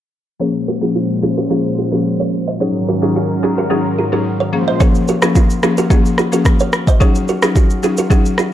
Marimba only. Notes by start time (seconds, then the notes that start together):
0.40 F3 A#3 C#4 G#4
0.81 F3 A#3 C#4 G#4
1.22 F3 A#3 C#4 G#4
1.50 F3 A#3 C#4 G#4
1.92 F3 A#3 C#4 G#4
2.60 F#3 C#4 D#4 G#4
3.02 F#3 C#4 D#4 G#4
3.43 F#3 C#4 D#4 G#4
3.70 F#3 C#4 D#4 G#4
4.12 F#3 C#4 D#4 G#4
4.53 F3 A#3 C#4 G#4
4.80 F3 A#3 C#4 G#4
5.22 F3 A#3 C#4 G#4
5.63 F3 A#3 C#4 G#4
5.90 F3 A#3 C#4 G#4
6.32 F3 A#3 C#4 G#4
7.00 F#3 C#4 D#4 G#4
7.42 F#3 C#4 D#4 G#4
7.83 F#3 C#4 D#4 G#4
8.10 F#3 C#4 D#4 G#4